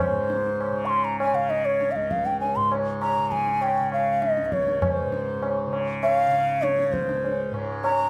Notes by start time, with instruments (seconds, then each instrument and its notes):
Already playing: tanpura C#2 C#3, bansuri C5
0.00 tabla na, tabla ge
0.10 tanpura G#2
0.30 tabla te
0.60 tabla na
0.72 tanpura C#3
0.86 bansuri C6 C#6
0.91 tabla na
1.04 bansuri A#5
1.20 bansuri G#5, tabla na
1.33 tanpura C#3, bansuri F5
1.50 bansuri D#5, tabla te
1.65 bansuri C#5
1.81 tabla te
1.92 tanpura C#2, bansuri F5
1.96 bansuri D#5, tabla te
2.11 bansuri F5, tabla ke
2.25 bansuri G5, tabla te
2.40 bansuri G#5, tabla tin
2.56 tanpura G#2, bansuri C6
2.72 tabla na
3.02 bansuri A#5, tabla na
3.19 tanpura C#3
3.31 bansuri G#5, tabla ke
3.47 tabla te
3.61 bansuri G5, tabla na
3.80 tanpura C#3
3.92 bansuri F5, tabla na
4.22 bansuri D#5, tabla te
4.37 tabla te
4.42 tanpura C#2, bansuri D#5
4.52 bansuri C#5, tabla ke
4.68 tabla te
4.82 bansuri C#5, tabla na, tabla ge
4.94 bansuri C5
5.05 tanpura G#2
5.12 tabla te
5.42 tabla na
5.67 tanpura C#3
5.73 tabla na
6.03 bansuri F5, tabla na
6.28 tanpura C#3
6.33 tabla te
6.62 bansuri C#5, tabla te
6.79 tabla te
6.89 tanpura C#2, bansuri C5
6.94 tabla ke
7.09 tabla te
7.24 tabla tin
7.51 tanpura G#2, tabla na
7.84 bansuri A#5, tabla na